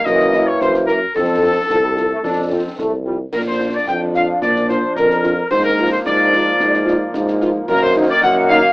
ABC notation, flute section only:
X:1
M:2/4
L:1/16
Q:1/4=110
K:Bb
V:1 name="Flute section"
e3 _d c2 B2 | A8- | A6 z2 | B c2 d g2 f2 |
d2 c2 B4 | c B2 c d4- | d6 z2 | B c2 d _g2 f2 |]